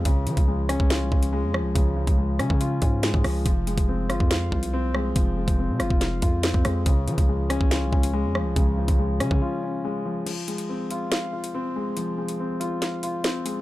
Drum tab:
CC |----------------|----------------|----------------|----------------|
HH |x-xx--x-x--x----|x--x--x-x-x-x-o-|x-xx--x-x--x----|x--x--x-x-x-x-x-|
SD |------r-o-----r-|------r-----o-r-|------r-o-----r-|------r-o---o-r-|
BD |o--o---o--o-----|o--o---o--o--o--|o--o---o--o-----|o--o---o--o--o--|

CC |----------------|----------------|x---------------|----------------|
HH |x-xx--x-x--x----|x--x--x---------|x-xx--x-x--x----|x--x--x-x-x-x-x-|
SD |------r-o-----r-|------r---------|--------o-------|--------o---o---|
BD |o--o---o--o-----|o--o---o--------|----------------|----------------|